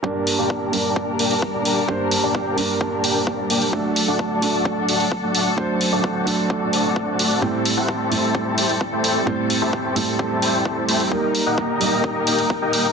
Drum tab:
HH |--o---o---oo--o-|--o---o---o---oo|--o---o---oo--o-|--o---o---o---oo|
BD |o---o---o---o---|o---o---o---o---|o---o---o---o---|o---o---o---o---|

HH |--o---o---oo--o-|--o---o---o---oo|--o---o---oo--o-|
BD |o---o---o---o---|o---o---o---o---|o---o---o---o---|